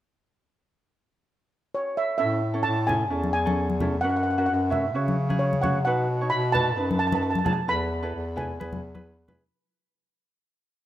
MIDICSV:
0, 0, Header, 1, 5, 480
1, 0, Start_track
1, 0, Key_signature, 3, "major"
1, 0, Tempo, 456969
1, 394, Time_signature, 4, 2, 24, 8
1, 11406, End_track
2, 0, Start_track
2, 0, Title_t, "Steel pan"
2, 0, Program_c, 0, 114
2, 1833, Note_on_c, 0, 73, 70
2, 2072, Note_on_c, 0, 76, 79
2, 2080, Note_off_c, 0, 73, 0
2, 2180, Note_off_c, 0, 76, 0
2, 2289, Note_on_c, 0, 76, 90
2, 2762, Note_on_c, 0, 81, 92
2, 2795, Note_off_c, 0, 76, 0
2, 2999, Note_off_c, 0, 81, 0
2, 3014, Note_on_c, 0, 80, 89
2, 3469, Note_off_c, 0, 80, 0
2, 3499, Note_on_c, 0, 80, 90
2, 4185, Note_off_c, 0, 80, 0
2, 4212, Note_on_c, 0, 78, 85
2, 4289, Note_off_c, 0, 78, 0
2, 4302, Note_on_c, 0, 78, 62
2, 4361, Note_off_c, 0, 78, 0
2, 4374, Note_on_c, 0, 78, 71
2, 4432, Note_off_c, 0, 78, 0
2, 4444, Note_on_c, 0, 78, 66
2, 4508, Note_off_c, 0, 78, 0
2, 4521, Note_on_c, 0, 78, 64
2, 4590, Note_off_c, 0, 78, 0
2, 4602, Note_on_c, 0, 78, 64
2, 4673, Note_off_c, 0, 78, 0
2, 4686, Note_on_c, 0, 78, 72
2, 4752, Note_off_c, 0, 78, 0
2, 4764, Note_on_c, 0, 78, 62
2, 4852, Note_off_c, 0, 78, 0
2, 4950, Note_on_c, 0, 76, 70
2, 5400, Note_off_c, 0, 76, 0
2, 5663, Note_on_c, 0, 73, 73
2, 5898, Note_on_c, 0, 78, 81
2, 5918, Note_off_c, 0, 73, 0
2, 6130, Note_off_c, 0, 78, 0
2, 6143, Note_on_c, 0, 78, 87
2, 6616, Note_on_c, 0, 83, 93
2, 6645, Note_off_c, 0, 78, 0
2, 6853, Note_on_c, 0, 81, 97
2, 6875, Note_off_c, 0, 83, 0
2, 7331, Note_off_c, 0, 81, 0
2, 7344, Note_on_c, 0, 81, 90
2, 7416, Note_off_c, 0, 81, 0
2, 7429, Note_on_c, 0, 81, 67
2, 7499, Note_off_c, 0, 81, 0
2, 7512, Note_on_c, 0, 81, 71
2, 7579, Note_off_c, 0, 81, 0
2, 7591, Note_on_c, 0, 81, 60
2, 7659, Note_off_c, 0, 81, 0
2, 7672, Note_on_c, 0, 81, 64
2, 7745, Note_off_c, 0, 81, 0
2, 7758, Note_on_c, 0, 81, 62
2, 7825, Note_off_c, 0, 81, 0
2, 7837, Note_on_c, 0, 81, 72
2, 7895, Note_off_c, 0, 81, 0
2, 7907, Note_on_c, 0, 81, 66
2, 7995, Note_off_c, 0, 81, 0
2, 8077, Note_on_c, 0, 83, 92
2, 8793, Note_on_c, 0, 80, 74
2, 8820, Note_off_c, 0, 83, 0
2, 9242, Note_off_c, 0, 80, 0
2, 11406, End_track
3, 0, Start_track
3, 0, Title_t, "Ukulele"
3, 0, Program_c, 1, 24
3, 2298, Note_on_c, 1, 61, 62
3, 2304, Note_on_c, 1, 64, 55
3, 2308, Note_on_c, 1, 69, 68
3, 2523, Note_off_c, 1, 61, 0
3, 2524, Note_off_c, 1, 69, 0
3, 2525, Note_off_c, 1, 64, 0
3, 2665, Note_on_c, 1, 69, 69
3, 2672, Note_on_c, 1, 61, 60
3, 2673, Note_on_c, 1, 64, 53
3, 2887, Note_off_c, 1, 61, 0
3, 2888, Note_off_c, 1, 69, 0
3, 2889, Note_off_c, 1, 64, 0
3, 3013, Note_on_c, 1, 61, 60
3, 3020, Note_on_c, 1, 69, 63
3, 3021, Note_on_c, 1, 64, 50
3, 3173, Note_off_c, 1, 61, 0
3, 3174, Note_off_c, 1, 64, 0
3, 3176, Note_off_c, 1, 69, 0
3, 3258, Note_on_c, 1, 61, 57
3, 3263, Note_on_c, 1, 64, 52
3, 3269, Note_on_c, 1, 69, 57
3, 3484, Note_off_c, 1, 61, 0
3, 3484, Note_off_c, 1, 64, 0
3, 3485, Note_off_c, 1, 69, 0
3, 3632, Note_on_c, 1, 69, 73
3, 3634, Note_on_c, 1, 64, 49
3, 3638, Note_on_c, 1, 61, 54
3, 3851, Note_off_c, 1, 61, 0
3, 3851, Note_off_c, 1, 64, 0
3, 3852, Note_off_c, 1, 69, 0
3, 4000, Note_on_c, 1, 61, 63
3, 4002, Note_on_c, 1, 69, 62
3, 4008, Note_on_c, 1, 64, 59
3, 4146, Note_off_c, 1, 61, 0
3, 4146, Note_off_c, 1, 69, 0
3, 4150, Note_off_c, 1, 64, 0
3, 4243, Note_on_c, 1, 61, 59
3, 4243, Note_on_c, 1, 66, 57
3, 4247, Note_on_c, 1, 70, 52
3, 4455, Note_off_c, 1, 66, 0
3, 4455, Note_off_c, 1, 70, 0
3, 4457, Note_off_c, 1, 61, 0
3, 4597, Note_on_c, 1, 61, 64
3, 4602, Note_on_c, 1, 70, 66
3, 4604, Note_on_c, 1, 66, 59
3, 4815, Note_off_c, 1, 61, 0
3, 4815, Note_off_c, 1, 70, 0
3, 4817, Note_off_c, 1, 66, 0
3, 4937, Note_on_c, 1, 73, 68
3, 4942, Note_on_c, 1, 61, 59
3, 4951, Note_on_c, 1, 66, 51
3, 5096, Note_off_c, 1, 73, 0
3, 5100, Note_off_c, 1, 61, 0
3, 5100, Note_off_c, 1, 66, 0
3, 5192, Note_on_c, 1, 61, 66
3, 5196, Note_on_c, 1, 66, 57
3, 5204, Note_on_c, 1, 73, 66
3, 5413, Note_off_c, 1, 61, 0
3, 5413, Note_off_c, 1, 66, 0
3, 5413, Note_off_c, 1, 73, 0
3, 5554, Note_on_c, 1, 61, 60
3, 5562, Note_on_c, 1, 66, 53
3, 5567, Note_on_c, 1, 68, 73
3, 5775, Note_off_c, 1, 61, 0
3, 5775, Note_off_c, 1, 66, 0
3, 5780, Note_off_c, 1, 68, 0
3, 5911, Note_on_c, 1, 73, 76
3, 5916, Note_on_c, 1, 66, 55
3, 5922, Note_on_c, 1, 61, 55
3, 6064, Note_off_c, 1, 73, 0
3, 6065, Note_off_c, 1, 61, 0
3, 6065, Note_off_c, 1, 66, 0
3, 6160, Note_on_c, 1, 63, 64
3, 6164, Note_on_c, 1, 66, 53
3, 6165, Note_on_c, 1, 71, 70
3, 6377, Note_off_c, 1, 66, 0
3, 6378, Note_off_c, 1, 63, 0
3, 6379, Note_off_c, 1, 71, 0
3, 6526, Note_on_c, 1, 73, 75
3, 6533, Note_on_c, 1, 66, 56
3, 6538, Note_on_c, 1, 63, 55
3, 6742, Note_off_c, 1, 66, 0
3, 6743, Note_off_c, 1, 63, 0
3, 6743, Note_off_c, 1, 73, 0
3, 6866, Note_on_c, 1, 71, 70
3, 6870, Note_on_c, 1, 66, 52
3, 6878, Note_on_c, 1, 63, 54
3, 7022, Note_off_c, 1, 66, 0
3, 7023, Note_off_c, 1, 71, 0
3, 7024, Note_off_c, 1, 63, 0
3, 7105, Note_on_c, 1, 63, 64
3, 7112, Note_on_c, 1, 66, 54
3, 7117, Note_on_c, 1, 71, 63
3, 7331, Note_off_c, 1, 63, 0
3, 7332, Note_off_c, 1, 66, 0
3, 7332, Note_off_c, 1, 71, 0
3, 7477, Note_on_c, 1, 66, 56
3, 7482, Note_on_c, 1, 71, 56
3, 7483, Note_on_c, 1, 63, 62
3, 7697, Note_off_c, 1, 71, 0
3, 7698, Note_off_c, 1, 66, 0
3, 7699, Note_off_c, 1, 63, 0
3, 7816, Note_on_c, 1, 63, 61
3, 7816, Note_on_c, 1, 66, 48
3, 7825, Note_on_c, 1, 68, 70
3, 7976, Note_off_c, 1, 66, 0
3, 7978, Note_off_c, 1, 63, 0
3, 7982, Note_off_c, 1, 68, 0
3, 8067, Note_on_c, 1, 64, 65
3, 8071, Note_on_c, 1, 69, 56
3, 8072, Note_on_c, 1, 71, 68
3, 8290, Note_off_c, 1, 69, 0
3, 8292, Note_off_c, 1, 64, 0
3, 8293, Note_off_c, 1, 71, 0
3, 8430, Note_on_c, 1, 71, 75
3, 8437, Note_on_c, 1, 69, 59
3, 8438, Note_on_c, 1, 64, 68
3, 8654, Note_off_c, 1, 69, 0
3, 8654, Note_off_c, 1, 71, 0
3, 8656, Note_off_c, 1, 64, 0
3, 8780, Note_on_c, 1, 64, 63
3, 8787, Note_on_c, 1, 71, 71
3, 8788, Note_on_c, 1, 69, 46
3, 8940, Note_off_c, 1, 64, 0
3, 8941, Note_off_c, 1, 69, 0
3, 8942, Note_off_c, 1, 71, 0
3, 9032, Note_on_c, 1, 71, 62
3, 9036, Note_on_c, 1, 64, 54
3, 9042, Note_on_c, 1, 68, 61
3, 9253, Note_off_c, 1, 64, 0
3, 9253, Note_off_c, 1, 71, 0
3, 9257, Note_off_c, 1, 68, 0
3, 9396, Note_on_c, 1, 64, 69
3, 9396, Note_on_c, 1, 71, 78
3, 9402, Note_on_c, 1, 68, 62
3, 9614, Note_off_c, 1, 64, 0
3, 9616, Note_off_c, 1, 71, 0
3, 9618, Note_off_c, 1, 68, 0
3, 9746, Note_on_c, 1, 71, 87
3, 9751, Note_on_c, 1, 68, 60
3, 9754, Note_on_c, 1, 64, 74
3, 9902, Note_off_c, 1, 68, 0
3, 9902, Note_off_c, 1, 71, 0
3, 9905, Note_off_c, 1, 64, 0
3, 11406, End_track
4, 0, Start_track
4, 0, Title_t, "Bass clarinet"
4, 0, Program_c, 2, 71
4, 2326, Note_on_c, 2, 45, 78
4, 2772, Note_off_c, 2, 45, 0
4, 2797, Note_on_c, 2, 45, 84
4, 3271, Note_on_c, 2, 40, 79
4, 3287, Note_off_c, 2, 45, 0
4, 4241, Note_on_c, 2, 42, 85
4, 4257, Note_off_c, 2, 40, 0
4, 4691, Note_off_c, 2, 42, 0
4, 4726, Note_on_c, 2, 42, 79
4, 5199, Note_on_c, 2, 49, 83
4, 5214, Note_off_c, 2, 42, 0
4, 6166, Note_on_c, 2, 47, 82
4, 6182, Note_off_c, 2, 49, 0
4, 6615, Note_off_c, 2, 47, 0
4, 6654, Note_on_c, 2, 47, 82
4, 7128, Note_on_c, 2, 42, 82
4, 7144, Note_off_c, 2, 47, 0
4, 7802, Note_off_c, 2, 42, 0
4, 8079, Note_on_c, 2, 40, 85
4, 8532, Note_off_c, 2, 40, 0
4, 8556, Note_on_c, 2, 40, 77
4, 9010, Note_off_c, 2, 40, 0
4, 9043, Note_on_c, 2, 40, 83
4, 9958, Note_off_c, 2, 40, 0
4, 11406, End_track
5, 0, Start_track
5, 0, Title_t, "Drums"
5, 3038, Note_on_c, 9, 64, 60
5, 3143, Note_off_c, 9, 64, 0
5, 3399, Note_on_c, 9, 63, 54
5, 3504, Note_off_c, 9, 63, 0
5, 3644, Note_on_c, 9, 63, 65
5, 3750, Note_off_c, 9, 63, 0
5, 3883, Note_on_c, 9, 63, 55
5, 3988, Note_off_c, 9, 63, 0
5, 3996, Note_on_c, 9, 63, 57
5, 3996, Note_on_c, 9, 64, 61
5, 4101, Note_off_c, 9, 63, 0
5, 4101, Note_off_c, 9, 64, 0
5, 4961, Note_on_c, 9, 64, 59
5, 5066, Note_off_c, 9, 64, 0
5, 5337, Note_on_c, 9, 63, 58
5, 5442, Note_off_c, 9, 63, 0
5, 5570, Note_on_c, 9, 63, 61
5, 5675, Note_off_c, 9, 63, 0
5, 5808, Note_on_c, 9, 63, 52
5, 5913, Note_off_c, 9, 63, 0
5, 5920, Note_on_c, 9, 63, 57
5, 5920, Note_on_c, 9, 64, 62
5, 6025, Note_off_c, 9, 63, 0
5, 6025, Note_off_c, 9, 64, 0
5, 6881, Note_on_c, 9, 64, 60
5, 6986, Note_off_c, 9, 64, 0
5, 7255, Note_on_c, 9, 63, 66
5, 7360, Note_off_c, 9, 63, 0
5, 7482, Note_on_c, 9, 63, 69
5, 7587, Note_off_c, 9, 63, 0
5, 7723, Note_on_c, 9, 63, 63
5, 7829, Note_off_c, 9, 63, 0
5, 7835, Note_on_c, 9, 63, 67
5, 7835, Note_on_c, 9, 64, 71
5, 7940, Note_off_c, 9, 63, 0
5, 7940, Note_off_c, 9, 64, 0
5, 8798, Note_on_c, 9, 64, 66
5, 8903, Note_off_c, 9, 64, 0
5, 9043, Note_on_c, 9, 63, 62
5, 9148, Note_off_c, 9, 63, 0
5, 9165, Note_on_c, 9, 63, 59
5, 9165, Note_on_c, 9, 64, 55
5, 9270, Note_off_c, 9, 63, 0
5, 9270, Note_off_c, 9, 64, 0
5, 9402, Note_on_c, 9, 63, 69
5, 9507, Note_off_c, 9, 63, 0
5, 9752, Note_on_c, 9, 63, 59
5, 9752, Note_on_c, 9, 64, 66
5, 9857, Note_off_c, 9, 63, 0
5, 9857, Note_off_c, 9, 64, 0
5, 11406, End_track
0, 0, End_of_file